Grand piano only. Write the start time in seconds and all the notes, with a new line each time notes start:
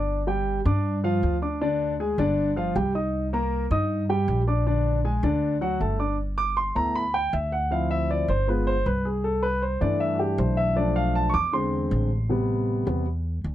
Already playing: D4 D5 D6
0.27 G3 G4 G5
0.65 D4 D5 D6
1.04 F3 F4 F5
1.42 D4 D5 D6
1.61 D3 D4 D5
2.00 G#3 G#4 G#5
2.19 D3 D4 D5
2.56 F3 F4 F5
2.76 G3 G4 G5
2.95 D#4 D#5 D#6
3.33 A#3 A#4 A#5
3.71 D#4 D#5 D#6
4.10 G3 G4 G5
4.47 D4 D5 D6
4.66 D3 D4 D5
5.04 G#3 G#4 G#5
5.23 D3 D4 D5
5.61 F#3 F#4 F#5
5.80 A3 A4 A5
5.99 D4 D5 D6
6.38 D6
6.57 C6
6.75 A3 B3 E4 A#5
6.96 B5
7.14 G5
7.34 E5
7.52 F#5
7.71 F3 C4 E4 F5
7.91 E5
8.11 D5
8.29 C5
8.48 G#3 B3 F4 B4
8.67 C5
8.86 B4
9.05 G#4
9.24 A4
9.43 B4
9.62 C5
9.81 E3 A3 D4 D5
10.00 E5
10.15 F#4
10.19 G4
10.38 C5
10.57 E5
10.76 F3 A3 D4 D5
10.96 F5
11.15 A5
11.29 C#6
11.34 D6
11.53 D3 G#3 C4 C6
12.29 C3 G3 B3
12.86 C3 G3 B3